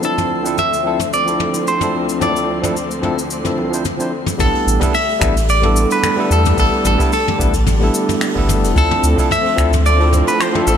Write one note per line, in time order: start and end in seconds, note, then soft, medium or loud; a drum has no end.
0.00 4.36 D2 medium
0.00 4.36 D3 medium
0.00 0.41 F3 medium
0.00 4.36 F3 medium
0.00 4.41 C4 medium
0.00 0.41 C4 medium
0.00 4.36 C4 medium
0.00 0.41 D4 medium
0.00 4.41 C7 medium
0.00 cabasa medium
0.04 0.42 E4 medium
0.04 0.60 A4 medium
0.04 0.42 A4 medium
0.04 high bongo medium
0.18 mid tom medium
0.18 cabasa soft
0.43 0.55 F3 medium
0.43 0.56 C4 medium
0.43 0.56 D4 medium
0.43 0.57 E4 medium
0.43 0.57 A4 medium
0.43 cabasa medium
0.58 1.13 E5 loud
0.58 mid tom medium
0.58 cabasa medium
0.73 cabasa soft
0.83 0.97 F3 medium
0.83 0.97 C4 medium
0.83 0.98 D4 medium
0.83 0.98 E4 medium
0.83 0.99 A4 loud
0.99 mid tom medium
0.99 cabasa medium
1.13 1.68 D5 loud
1.13 cabasa medium
1.25 1.77 F3 medium
1.25 1.77 C4 medium
1.25 1.78 D4 medium
1.25 1.78 E4 medium
1.25 1.79 A4 medium
1.25 cabasa soft
1.40 mid tom medium
1.54 high bongo soft
1.54 cabasa medium
1.67 2.22 C5 medium
1.67 cabasa medium
1.80 2.17 F3 medium
1.80 2.18 C4 medium
1.80 2.18 D4 medium
1.80 2.19 E4 medium
1.80 2.19 A4 medium
1.80 mid tom medium
1.80 cabasa soft
2.09 cabasa medium
2.19 2.59 F3 medium
2.19 2.59 C4 medium
2.19 2.60 D4 medium
2.19 2.60 E4 medium
2.19 2.61 A4 medium
2.19 4.09 D5 medium
2.19 mid tom medium
2.19 high bongo medium
2.19 cabasa medium
2.36 cabasa soft
2.62 2.74 F3 medium
2.62 2.74 C4 medium
2.62 2.74 D4 medium
2.62 2.75 E4 medium
2.62 2.75 A4 medium
2.62 mid tom medium
2.62 cabasa medium
2.77 cabasa medium
2.91 cabasa soft
3.02 3.15 F3 medium
3.02 3.16 C4 medium
3.02 3.16 D4 medium
3.02 3.17 E4 medium
3.02 3.17 A4 loud
3.02 mid tom medium
3.19 cabasa medium
3.30 cabasa medium
3.43 3.68 F3 medium
3.43 3.69 C4 medium
3.43 3.69 D4 medium
3.43 3.70 E4 medium
3.43 3.70 A4 medium
3.43 mid tom medium
3.43 cabasa soft
3.58 high bongo medium
3.71 3.83 F3 medium
3.71 3.83 C4 medium
3.71 3.83 D4 medium
3.71 3.84 E4 medium
3.71 3.84 C5 medium
3.71 cabasa medium
3.85 mid tom medium
3.85 cabasa medium
3.98 4.10 F3 medium
3.98 4.10 C4 medium
3.98 4.11 D4 medium
3.98 4.11 E4 medium
3.98 4.12 C5 medium
3.98 cabasa soft
4.26 mid tom medium
4.26 cabasa medium
4.38 4.51 A1 medium
4.38 8.72 D3 medium
4.38 4.77 G3 medium
4.38 8.72 G3 medium
4.38 10.77 A3 medium
4.38 4.78 B3 medium
4.38 4.78 D4 medium
4.38 4.79 E4 medium
4.38 4.96 A4 loud
4.38 4.79 A4 medium
4.38 kick loud
4.38 mid tom medium
4.38 open hi-hat medium
4.38 cabasa soft
4.55 open hi-hat soft
4.67 4.79 A1 medium
4.67 cabasa medium
4.80 4.92 G3 medium
4.80 4.92 B3 medium
4.80 4.93 D4 medium
4.80 4.93 E4 medium
4.80 4.94 A4 loud
4.80 kick loud
4.80 mid tom medium
4.80 open hi-hat medium
4.80 cabasa medium
4.94 5.49 E5 loud
4.94 open hi-hat medium
4.94 cabasa soft
5.09 open hi-hat medium
5.20 5.86 A1 loud
5.20 5.33 G3 loud
5.20 5.34 B3 medium
5.20 5.34 D4 medium
5.20 5.35 E4 medium
5.20 5.35 A4 loud
5.20 finger snap medium
5.20 kick loud
5.20 mid tom medium
5.20 cabasa medium
5.36 open hi-hat medium
5.36 cabasa medium
5.48 5.92 D5 loud
5.48 open hi-hat medium
5.48 cabasa soft
5.62 6.14 G3 medium
5.62 6.14 B3 medium
5.62 6.15 D4 medium
5.62 6.15 E4 medium
5.62 6.15 A4 medium
5.62 mid tom medium
5.62 open hi-hat soft
5.76 cabasa loud
5.90 6.32 B4 medium
5.90 open hi-hat medium
5.90 cabasa medium
6.03 finger snap medium
6.03 mid tom medium
6.03 open hi-hat medium
6.03 cabasa soft
6.16 6.54 G3 medium
6.16 6.54 B3 medium
6.16 6.55 D4 medium
6.16 6.55 E4 medium
6.16 6.56 A4 loud
6.30 6.53 E2 medium
6.30 6.58 A4 medium
6.30 cabasa medium
6.45 mid tom medium
6.45 open hi-hat medium
6.45 cabasa medium
6.56 6.70 A1 medium
6.56 6.95 G3 medium
6.56 6.96 B3 medium
6.56 6.96 D4 medium
6.56 6.97 E4 medium
6.56 6.84 A4 loud
6.56 6.97 A4 medium
6.56 kick loud
6.56 open hi-hat medium
6.56 cabasa medium
6.72 open hi-hat soft
6.85 6.97 A1 medium
6.85 7.12 A4 medium
6.85 mid tom medium
6.85 cabasa medium
6.98 7.10 G3 medium
6.98 7.10 B3 medium
6.98 7.11 D4 medium
6.98 7.11 E4 medium
6.98 7.12 A4 loud
6.98 kick loud
6.98 open hi-hat medium
6.98 cabasa medium
7.12 7.91 A4 medium
7.12 open hi-hat medium
7.12 cabasa soft
7.27 mid tom medium
7.27 open hi-hat soft
7.38 7.90 A1 loud
7.38 7.52 G3 loud
7.38 7.52 B3 medium
7.38 7.52 D4 loud
7.38 7.53 E4 medium
7.38 7.53 A4 loud
7.38 kick loud
7.38 cabasa medium
7.54 kick medium
7.54 open hi-hat medium
7.54 cabasa medium
7.67 mid tom medium
7.67 open hi-hat medium
7.67 cabasa medium
7.80 8.32 G3 medium
7.80 8.32 B3 medium
7.80 8.33 D4 medium
7.80 8.33 E4 medium
7.80 8.34 A4 medium
7.80 open hi-hat soft
7.94 cabasa medium
8.09 mid tom medium
8.09 open hi-hat medium
8.09 cabasa medium
8.21 finger snap medium
8.21 open hi-hat medium
8.21 cabasa medium
8.35 8.65 G1 medium
8.35 8.72 G3 medium
8.35 8.73 B3 medium
8.35 8.73 D4 medium
8.35 8.74 E4 medium
8.35 8.74 A4 loud
8.35 kick medium
8.35 open hi-hat soft
8.49 mid tom medium
8.49 cabasa loud
8.63 8.73 E1 medium
8.63 open hi-hat medium
8.63 cabasa medium
8.74 8.88 D2 medium
8.74 10.77 D3 medium
8.74 9.13 F3 medium
8.74 10.77 F3 medium
8.74 9.14 C4 medium
8.74 10.77 C4 medium
8.74 9.14 D4 medium
8.74 9.15 E4 medium
8.74 9.31 A4 loud
8.74 9.15 A4 medium
8.74 kick loud
8.74 open hi-hat medium
8.74 cabasa soft
8.91 mid tom medium
8.91 open hi-hat soft
9.03 9.15 D2 medium
9.03 cabasa medium
9.16 9.28 F3 medium
9.16 9.29 C4 medium
9.16 9.29 D4 medium
9.16 9.29 E4 medium
9.16 9.30 A4 loud
9.16 kick loud
9.16 open hi-hat medium
9.16 cabasa medium
9.31 9.82 E5 loud
9.31 mid tom medium
9.31 open hi-hat medium
9.31 cabasa soft
9.46 open hi-hat medium
9.56 10.22 D2 loud
9.56 9.70 F3 loud
9.56 9.70 C4 medium
9.56 9.71 D4 medium
9.56 9.71 E4 medium
9.56 9.72 A4 loud
9.56 finger snap medium
9.56 kick loud
9.56 cabasa medium
9.73 mid tom medium
9.73 open hi-hat medium
9.73 cabasa medium
9.85 10.28 D5 loud
9.85 open hi-hat medium
9.85 cabasa medium
9.98 10.50 F3 medium
9.98 10.51 C4 medium
9.98 10.51 D4 medium
9.98 10.51 E4 medium
9.98 10.52 A4 medium
9.98 open hi-hat soft
10.13 mid tom medium
10.13 cabasa medium
10.27 10.41 B4 loud
10.27 open hi-hat medium
10.27 cabasa medium
10.41 10.67 C5 medium
10.41 finger snap medium
10.41 open hi-hat medium
10.41 cabasa medium
10.52 10.77 F3 medium
10.52 10.77 C4 medium
10.52 10.77 D4 medium
10.52 10.77 E4 medium
10.52 10.77 A4 loud
10.52 mid tom medium
10.67 10.77 A1 medium
10.67 10.77 A4 medium
10.67 cabasa medium